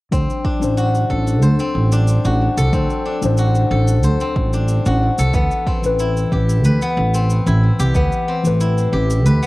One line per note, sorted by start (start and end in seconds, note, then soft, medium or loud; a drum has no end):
0.11 0.24 D2 medium
0.11 0.57 F#3 medium
0.11 1.59 C4 medium
0.11 0.58 D4 medium
0.11 0.58 C5 medium
0.11 kick loud
0.11 cabasa soft
0.30 cabasa soft
0.45 1.92 D4 medium
0.45 kick medium
0.59 1.02 A1 medium
0.59 2.68 F#3 medium
0.59 2.69 D4 medium
0.59 cabasa medium
0.64 2.70 C5 medium
0.77 2.25 F#4 medium
0.77 cabasa soft
0.95 cabasa soft
1.10 1.42 A1 medium
1.10 2.57 A4 medium
1.10 kick soft
1.27 cabasa medium
1.42 1.54 D2 medium
1.42 3.40 C5 medium
1.42 cabasa soft
1.59 2.73 C4 medium
1.59 cabasa soft
1.75 2.16 A1 medium
1.92 3.05 D4 medium
1.92 cabasa medium
2.08 cabasa soft
2.25 2.46 A1 medium
2.25 3.38 F#4 medium
2.25 cabasa soft
2.57 2.68 C2 medium
2.57 3.71 A4 medium
2.57 cabasa medium
2.72 2.85 D2 medium
2.72 3.18 F#3 medium
2.72 4.21 C4 medium
2.72 3.19 D4 medium
2.72 3.19 C5 medium
2.72 kick loud
2.72 cabasa medium
2.90 cabasa soft
3.06 4.53 D4 medium
3.21 3.63 A1 medium
3.21 5.30 F#3 medium
3.21 5.30 D4 medium
3.21 5.31 C5 loud
3.21 cabasa medium
3.38 4.86 F#4 medium
3.38 cabasa soft
3.55 cabasa soft
3.71 4.04 A1 medium
3.71 5.19 A4 medium
3.88 cabasa medium
4.03 4.15 D2 medium
4.03 5.40 C5 medium
4.03 cabasa medium
4.20 5.40 C4 medium
4.20 cabasa soft
4.36 4.77 A1 medium
4.36 kick loud
4.53 7.34 D4 medium
4.53 cabasa medium
4.68 cabasa medium
4.86 5.07 A1 loud
4.86 6.38 F#4 medium
4.86 cabasa soft
5.18 5.29 C2 medium
5.18 7.39 A4 loud
5.18 cabasa medium
5.33 5.46 D2 medium
5.33 5.79 E3 medium
5.33 5.73 B3 medium
5.33 5.80 B4 medium
5.33 kick loud
5.33 cabasa soft
5.51 cabasa soft
5.67 6.71 C4 medium
5.67 kick loud
5.82 6.24 A1 medium
5.82 7.90 E3 medium
5.82 7.92 B4 loud
5.82 cabasa medium
5.99 7.47 E4 medium
5.99 cabasa medium
6.17 cabasa soft
6.32 6.64 A1 medium
6.32 7.79 G4 medium
6.32 kick medium
6.49 cabasa medium
6.64 6.76 D2 medium
6.64 7.20 B4 medium
6.64 cabasa medium
6.82 7.20 B3 medium
6.82 cabasa soft
6.97 7.38 A1 medium
7.14 8.01 C4 medium
7.14 cabasa medium
7.30 cabasa medium
7.47 7.68 A1 medium
7.47 8.60 E4 medium
7.47 cabasa soft
7.80 7.90 C2 medium
7.80 8.92 G4 loud
7.80 cabasa medium
7.95 8.06 D2 medium
7.95 8.40 E3 medium
7.95 8.34 B3 medium
7.95 8.41 B4 medium
7.95 kick loud
7.95 cabasa medium
8.12 cabasa soft
8.28 9.32 C4 medium
8.43 8.85 A1 medium
8.43 9.46 E3 medium
8.43 9.46 B4 medium
8.43 cabasa medium
8.61 9.46 E4 medium
8.61 cabasa medium
8.78 cabasa soft
8.93 9.26 A1 medium
8.93 9.46 G4 medium
9.10 cabasa medium
9.26 9.37 D2 medium
9.26 9.46 B4 medium
9.26 cabasa medium
9.42 9.46 B3 medium
9.42 cabasa soft